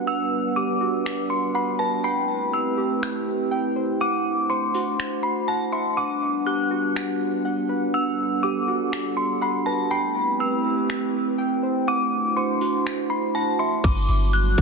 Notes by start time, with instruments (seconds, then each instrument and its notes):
Already playing: ambient pad G3 B3 D4 B4 F#5, synth keys F#4 B4
0.07 synth keys F#5, synth bell E6
0.56 synth keys G4, synth bell D6
0.81 synth keys F#4
1.06 finger snap
1.30 synth bell C6
1.54 synth keys F#5, synth bell B5
1.79 synth keys B4, synth bell A5
2.04 ambient pad A3 C4 E4 G4, synth keys G5, synth bell B5
2.52 synth keys B4, synth bell E6
2.78 synth keys G4
3.03 finger snap
3.51 synth keys G5
3.76 synth keys C5
4.00 ambient pad A3 D4 C5 F#5, synth keys F#5, synth bell D6
4.50 synth keys C5, synth bell C6
4.74 synth keys F#4, open hi-hat
5.00 finger snap
5.23 synth bell B5
5.48 synth keys F#5, synth bell A5
5.72 synth keys E5, synth bell C6
5.97 ambient pad G3 B3 B4, synth keys F#5, synth bell D6
6.46 synth keys G4, synth bell F#6
6.71 synth keys F#4
6.96 finger snap
7.45 synth keys F#5
7.69 synth keys B4
7.94 ambient pad A4, synth keys F#5, synth bell E6
8.43 synth keys G4, synth bell D6
8.68 synth keys F#4
8.93 finger snap
9.17 synth bell C6
9.41 synth keys F#5, synth bell B5
9.66 synth keys B4, synth bell A5
9.91 ambient pad A3 C4 E4 G4 B4, synth keys G5, synth bell B5
10.39 synth keys B4, synth bell E6
10.64 synth keys G4
10.90 finger snap
11.38 synth keys G5
11.63 synth keys C5
11.87 ambient pad A3 D4 E4 F#4 C5, synth keys F#5, synth bell D6
12.37 synth keys C5, synth bell C6
12.61 synth keys F#4, open hi-hat
12.87 finger snap
13.10 synth bell B5
13.35 synth keys F#5, synth bell A5
13.59 synth keys E5, synth bell C6
13.84 808-style bass G1, ambient pad D3 F#3 G3 B3 F#4, synth bell D6, kick, closed hi-hat, crash
14.09 808-style bass G1, closed hi-hat
14.33 synth bell F#6, closed hi-hat
14.58 808-style bass G1, kick, closed hi-hat